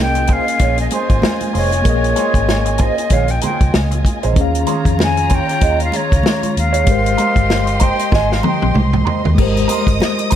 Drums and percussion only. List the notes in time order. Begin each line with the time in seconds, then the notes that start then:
0.15 closed hi-hat
0.27 kick, closed hi-hat
0.48 closed hi-hat
0.59 kick, closed hi-hat, muted conga
0.78 closed hi-hat
0.91 closed hi-hat, muted conga
1.10 kick, closed hi-hat
1.22 snare, high conga
1.40 closed hi-hat, high conga
1.55 open hi-hat
1.72 closed hi-hat
1.85 kick, closed hi-hat, muted conga
2.04 closed hi-hat
2.16 closed hi-hat, muted conga
2.34 kick, closed hi-hat
2.49 snare, high conga
2.66 closed hi-hat
2.78 kick, closed hi-hat
2.98 closed hi-hat
3.10 kick, closed hi-hat, muted conga, low conga
3.28 closed hi-hat
3.41 closed hi-hat, muted conga, low conga
3.61 kick, closed hi-hat
3.74 snare, high conga
3.91 closed hi-hat, high conga
4.05 kick, closed hi-hat
4.23 closed hi-hat
4.36 kick, closed hi-hat, muted conga
4.55 closed hi-hat
4.67 closed hi-hat, muted conga
4.85 kick, closed hi-hat
4.99 snare, high conga
5.17 closed hi-hat
5.30 kick, closed hi-hat
5.49 closed hi-hat
5.61 kick, closed hi-hat
5.80 closed hi-hat
5.92 closed hi-hat, muted conga
6.12 kick, closed hi-hat
6.23 snare, high conga
6.43 closed hi-hat, high conga
6.57 closed hi-hat
6.74 closed hi-hat
6.87 kick, closed hi-hat, muted conga
7.06 closed hi-hat
7.18 closed hi-hat, muted conga
7.36 kick, closed hi-hat
7.50 snare, high conga
7.67 closed hi-hat
7.80 kick, closed hi-hat
7.99 closed hi-hat
8.12 kick, snare, low conga
8.32 snare
8.43 high tom, muted conga, low conga
8.62 high tom
8.75 mid tom, high conga
8.93 mid tom, high conga
9.07 floor tom
9.25 floor tom
9.38 kick, crash, muted conga, muted triangle
9.57 closed hi-hat, muted triangle
9.69 closed hi-hat, muted conga, triangle
9.87 kick, closed hi-hat, muted triangle
10.00 snare, high conga, muted triangle
10.18 closed hi-hat, muted triangle
10.30 kick, closed hi-hat, triangle